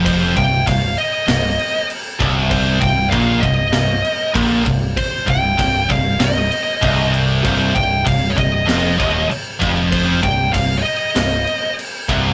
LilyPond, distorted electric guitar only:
\new Staff \with { instrumentName = "Distorted electric guitar" } { \clef bass \time 4/4 \key c \minor \tempo 4 = 97 f,8 c,8 c,8 r8 c,8 r4 c,8~ | c,8 c,8 bes,8 c,8 c,8 r8 bes,8 c,8 | r8 c,8 c,8 c,8 c,8 r8 c,4 | c,8 c,8 c,8 c,8 f,8 ees,8 r8 f,8~ |
f,8 c,8 c,8 r8 c,8 r4 c,8 | }